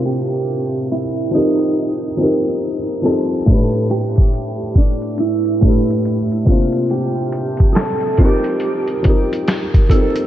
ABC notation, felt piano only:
X:1
M:4/4
L:1/8
Q:"Swing 16ths" 1/4=70
K:F
V:1 name="Felt piano"
[C,CDFB]2 z [F,C_EGB]2 [F,CEGB] z [F,CEGc] | [A,,A,DG=B]2 z3 [A,,A,DGB] z [C,_B,DFc]- | [C,B,DFc]2 z [F,C_EGB]2 [F,CEGB] z [F,CEGB] |]